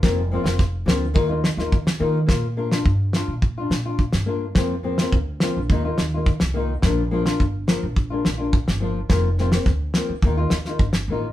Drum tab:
SD |o--oo-o---oo-o--|o--o--o---o--o--|o--o--o---o--o--|o--o--o---o--o--|
BD |o---o---o---o---|o---o---o---o---|o---o---o---o---|o---o---o---o---|

SD |o-ooo-o---oo-o--|
BD |o---o---o---o---|